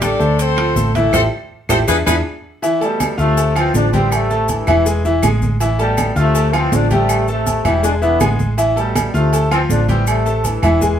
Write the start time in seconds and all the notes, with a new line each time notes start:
Already playing: A1
0.01 G3 D4 G4 A4 D5, high conga, high timbale, claves, maracas
0.19 D2 A3 A4 C5, maracas
0.39 C4 A4 C5, high conga, high timbale, maracas
0.57 F3 F4 F5, high timbale, claves
0.75 A1 A3 A4 C5, high conga, maracas
0.95 E3 A3 E4 A4 E5, high conga, high timbale, maracas
1.13 A1 C4 E4 G4 A4 C5, low conga, high timbale, claves, maracas
1.69 A1 C4 E4 G4 A4 C5, low conga, high timbale, claves, maracas
1.88 E2 B3 D4 E4 G#4 B4, low conga, high timbale, claves, maracas
2.06 E2 B3 D4 E4 G#4 B4, low conga, high timbale, claves, maracas
2.62 E3 E4 E5, high conga, low agogo, maracas
2.81 B2 G3 A3 A4 A5, high conga, low agogo, maracas
3.00 high conga, low timbale, low agogo, claves, maracas
3.18 D2 C3 A3 F4 F5 F6, maracas
3.37 A3 A4 A5, high conga, low agogo, maracas
3.55 E3 F3 C4 F4 F5, high conga, low agogo, claves, maracas
3.74 A1 F3 D4, high conga, low timbale, maracas
3.93 E3 G3 C4 G4 G5, high conga, low agogo, maracas
4.12 C3 A3, high conga, low agogo, claves, maracas
4.30 A3 A4 A5, high conga, maracas
4.48 G2 E3, high conga, low timbale, low agogo, maracas
4.67 E1 E3 E4 E5, high conga, low conga, low agogo, claves, maracas
4.86 G#3 G#4 G#5, high conga, maracas
5.05 E3 E4 E5, high conga, maracas
5.23 A1 G#3 G#4 G#5, high conga, low timbale, low agogo, claves, maracas
5.42 high conga, maracas
5.60 E3 E4 E5, high conga, low agogo, maracas
5.79 B2 G3 A3 A4 A5, high conga, low agogo, maracas
5.97 high conga, low timbale, low agogo, claves, maracas
6.16 D2 C3 A3 F4 F5 F6, maracas
6.34 A3 A4 A5, low agogo, maracas
6.53 E3 F3 C4 F4 F5, high conga, low agogo, claves, maracas
6.72 A1 F3 D4, high conga, low timbale, maracas
6.91 C3 G3 A3 G4 G5, high conga, low agogo, maracas
7.09 high conga, low agogo, claves, maracas
7.28 C3 A3 A4 A5, high conga, maracas
7.47 high conga, low timbale, low agogo, maracas
7.65 E1 B2 E3 G3 E4 E5, high conga, low conga, low agogo, claves, maracas
7.83 G#3 D4 G#4 G#5, high conga, maracas
8.02 D3 E3 B3 E4 E5, high conga, maracas
8.20 A1 G#3 G#4 G#5, high conga, low timbale, low agogo, claves, maracas
8.39 high conga, maracas
8.57 E3 E4 E5, high conga, low agogo, maracas
8.76 B2 G3 A3 A4 A5, high conga, low agogo, maracas
8.95 high conga, low timbale, low agogo, claves, maracas
9.14 D2 C3 A3 F4 F5 F6, maracas
9.33 A3 A4 A5, high conga, low agogo, maracas
9.51 E3 F3 C4 F4 F5, high conga, low agogo, claves, maracas
9.69 A1 F3 D4, high conga, low timbale, maracas
9.89 E3 G3 C4 G4 G5, high conga, low agogo, maracas
10.07 C3 A3, high conga, low agogo, claves, maracas
10.26 A3 A4 A5, high conga, maracas
10.44 G2 E3, high conga, low timbale, low agogo, maracas
10.62 E1 E3 E4 E5, high conga, low conga, low agogo, claves, maracas
10.81 G#3 G#4 G#5, high conga, low conga, maracas